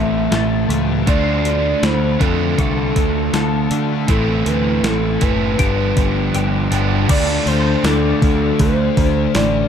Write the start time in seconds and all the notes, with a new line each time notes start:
Already playing: A1 A2 E3 A3 C4 E4 A4 E5
0.31 A1 A4, snare, open hi-hat
0.69 C#2 A2 E3 A3, open hi-hat
1.07 D2 D3 A3 D4 F4 C5 D5, kick, open hi-hat
1.45 D5, open hi-hat
1.83 D2 C5 B5, snare, open hi-hat
2.20 F2 D3 A3 D4 F4 A4, kick, open hi-hat
2.58 C2 A4, kick, open hi-hat
2.96 D2, kick, open hi-hat
3.33 D2 A4, snare, open hi-hat
3.70 D3 A3 D4, open hi-hat
4.08 A1 A2 E3 A3 C4 E4 A4, kick, open hi-hat
4.46 D2 B4, open hi-hat
4.83 A1 A4, snare, open hi-hat
5.21 F#1 A2 E3 A3 C4 E4 B4, kick, open hi-hat
5.58 G1 G2 D3 F3 G3 B3 D4 G4, kick, open hi-hat
5.97 G1, kick, open hi-hat
6.35 G1 G4, open hi-hat
6.71 G1 G2 D3 F3 B3 D4, open hi-hat
7.08 D2 D3 A3 D4 F4 D5, kick, open hi-hat, crash
7.46 D2 C5, open hi-hat
7.84 D2 A4 D5, snare, open hi-hat
8.22 D2 A4, kick, open hi-hat
8.59 D2 C5, kick, open hi-hat
8.96 D2 C5, kick, open hi-hat
9.33 A1 D5, snare, open hi-hat